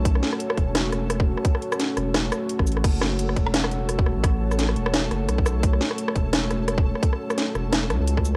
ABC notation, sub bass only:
X:1
M:4/4
L:1/16
Q:"Swing 16ths" 1/4=172
K:F#m
V:1 name="Sub bass" clef=bass
B,,,2 z4 E,,,8- E,,, z | z6 E,,,4 z3 A,,,3 | F,,,6 E,,,8- E,,, A,,,- | A,,,6 E,,,4 F,,,2 B,,,4- |
B,,,2 z4 E,,,8- E,,, z | z6 E,,,4 C,, C,,4- C,, |]